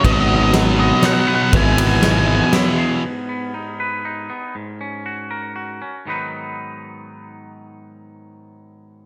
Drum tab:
RD |x-x-x-|xxx-x-|------|------|
SD |--o-o-|--o-o-|------|------|
BD |o-----|o-----|------|------|

RD |------|------|
SD |------|------|
BD |------|------|